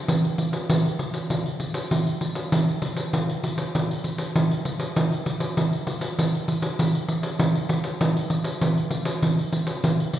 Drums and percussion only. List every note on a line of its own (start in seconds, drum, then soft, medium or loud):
0.08 pandeiro medium
0.25 pandeiro soft
0.38 pandeiro medium
0.53 pandeiro medium
0.70 pandeiro medium
0.86 pandeiro soft
0.99 pandeiro medium
1.14 pandeiro medium
1.30 pandeiro medium
1.46 pandeiro soft
1.60 pandeiro medium
1.74 pandeiro medium
1.91 pandeiro medium
2.07 pandeiro soft
2.21 pandeiro medium
2.35 pandeiro medium
2.52 pandeiro medium
2.69 pandeiro soft
2.82 pandeiro medium
2.97 pandeiro medium
3.13 pandeiro medium
3.29 pandeiro soft
3.44 pandeiro medium
3.58 pandeiro medium
3.75 pandeiro medium
3.91 pandeiro soft
4.04 pandeiro medium
4.18 pandeiro medium
4.36 pandeiro medium
4.51 pandeiro soft
4.65 pandeiro medium
4.80 pandeiro medium
4.96 pandeiro medium
5.12 pandeiro soft
5.26 pandeiro medium
5.40 pandeiro medium
5.57 pandeiro medium
5.73 pandeiro soft
5.87 pandeiro medium
6.01 pandeiro medium
6.19 pandeiro medium
6.35 pandeiro soft
6.48 pandeiro medium
6.62 pandeiro medium
6.79 pandeiro medium
6.95 pandeiro soft
7.08 pandeiro medium
7.23 pandeiro medium
7.39 pandeiro medium
7.55 pandeiro soft
7.69 pandeiro medium
7.84 pandeiro medium
8.01 pandeiro medium
8.17 pandeiro soft
8.30 pandeiro medium
8.44 pandeiro medium
8.61 pandeiro medium
8.77 pandeiro soft
8.91 pandeiro medium
9.05 pandeiro medium
9.22 pandeiro medium
9.39 pandeiro soft
9.53 pandeiro medium
9.67 pandeiro medium
9.84 pandeiro medium
10.00 pandeiro soft
10.13 pandeiro medium